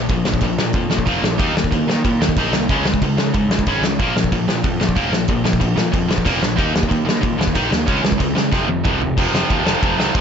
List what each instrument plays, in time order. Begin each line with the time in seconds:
0.09 picked electric bass A#1, distorted electric guitar A#2 F3, kick, crash
0.25 picked electric bass A#1, distorted electric guitar A#2 F3, snare
0.34 kick
0.41 picked electric bass A#1, distorted electric guitar A#2 F3, kick, crash
0.57 picked electric bass A#2, distorted electric guitar A#2 F3, snare
0.73 picked electric bass F2, distorted electric guitar A#2 F3, kick, crash
0.89 picked electric bass A#1, distorted electric guitar A#2 F3, snare
0.99 kick
1.07 picked electric bass F1, distorted electric guitar A#2 F3 A#3, kick, crash
1.22 picked electric bass A#1, distorted electric guitar A#2 F3, snare
1.39 picked electric bass D#2, distorted electric guitar D#3 A#3 D#4, kick, crash
1.53 picked electric bass D#2, distorted electric guitar D#3 A#3, snare
1.64 kick
1.72 picked electric bass D#2, distorted electric guitar D#3 A#3, kick, crash
1.87 picked electric bass D#3, distorted electric guitar D#3 A#3, snare
2.04 picked electric bass A#2, distorted electric guitar D#3 A#3, kick, crash
2.20 picked electric bass D#2, distorted electric guitar D#3 A#3, snare
2.29 kick
2.36 picked electric bass A#1, distorted electric guitar D#3 A#3 D#4, kick, crash
2.53 picked electric bass C2, distorted electric guitar D#3 A#3, snare
2.69 picked electric bass C#2, distorted electric guitar C#3 G#3 C#4, kick, crash
2.85 picked electric bass C#2, distorted electric guitar C#3 G#3, snare
2.94 kick
3.02 picked electric bass C#2, distorted electric guitar C#3 G#3, kick, crash
3.17 picked electric bass C#3, distorted electric guitar C#3 G#3, snare
3.34 picked electric bass G#2, distorted electric guitar C#3 G#3, kick, crash
3.49 picked electric bass C#2, distorted electric guitar C#3 G#3, snare
3.59 kick
3.66 picked electric bass G#1, distorted electric guitar C#3 G#3 C#4, kick, crash
3.81 picked electric bass C#2, distorted electric guitar C#3 G#3, snare
3.99 picked electric bass A#1, distorted electric guitar A#2 F3 A#3, kick, crash
4.14 picked electric bass A#1, distorted electric guitar A#2 F3, snare
4.24 kick
4.32 picked electric bass A#1, distorted electric guitar A#2 F3, kick, crash
4.47 picked electric bass A#2, distorted electric guitar A#2 F3, snare
4.64 picked electric bass F2, distorted electric guitar A#2 F3, kick, crash
4.80 picked electric bass A#1, distorted electric guitar A#2 F3, snare
4.89 kick
4.96 picked electric bass F1, distorted electric guitar A#2 F3 A#3, kick, crash
5.12 picked electric bass A#1, distorted electric guitar A#2 F3, snare
5.28 picked electric bass A#1, distorted electric guitar A#2 F3, kick, crash
5.45 picked electric bass A#1, distorted electric guitar A#2 F3, snare
5.53 kick
5.60 picked electric bass A#1, distorted electric guitar A#2 F3, kick, crash
5.76 distorted electric guitar A#2 F3, picked electric bass A#2, snare
5.92 picked electric bass F2, distorted electric guitar A#2 F3, kick, crash
6.08 picked electric bass A#1, distorted electric guitar A#2 F3, snare
6.18 kick
6.25 picked electric bass F1, distorted electric guitar A#2 F3 A#3, kick, crash
6.42 picked electric bass A#1, distorted electric guitar A#2 F3, snare
6.58 picked electric bass D#2, distorted electric guitar D#3 A#3 D#4, kick, crash
6.74 picked electric bass D#2, distorted electric guitar D#3 A#3, snare
6.83 kick
6.89 picked electric bass D#2, distorted electric guitar D#3 A#3, kick, crash
7.06 distorted electric guitar D#3 A#3, picked electric bass D#3, snare
7.21 picked electric bass A#2, distorted electric guitar D#3 A#3, kick, crash
7.38 picked electric bass D#2, distorted electric guitar D#3 A#3, snare
7.47 kick
7.55 picked electric bass A#1, distorted electric guitar D#3 A#3 D#4, kick, crash
7.71 picked electric bass D#2, distorted electric guitar D#3 A#3, snare
7.88 picked electric bass C#2, distorted electric guitar C#3 G#3 C#4, kick, crash
8.03 picked electric bass C#2, distorted electric guitar C#3 G#3, snare
8.12 kick
8.19 picked electric bass C#2, distorted electric guitar C#3 G#3, kick, crash
8.34 picked electric bass C#3, distorted electric guitar C#3 G#3, snare
8.51 picked electric bass F1, distorted electric guitar F2 C3 F3, kick, snare
8.67 picked electric bass F1, distorted electric guitar F2 C3, high tom
8.84 picked electric bass C2, distorted electric guitar F2 C3 F3, kick, mid tom
9.01 picked electric bass F1, distorted electric guitar F2 C3, floor tom
9.17 picked electric bass F1, distorted electric guitar F2 C3 F3, kick, crash
9.32 picked electric bass F1, distorted electric guitar F2 C3 F3, snare
9.49 picked electric bass D#2, distorted electric guitar F2 C3 F3, kick, ride
9.64 picked electric bass F1, distorted electric guitar F2 C3 F3, snare
9.82 picked electric bass F1, distorted electric guitar F2 C3 F3, kick, ride
9.97 picked electric bass C2, distorted electric guitar F2 C3 F3, snare
10.15 picked electric bass F1, distorted electric guitar F2 C3 F3, kick, ride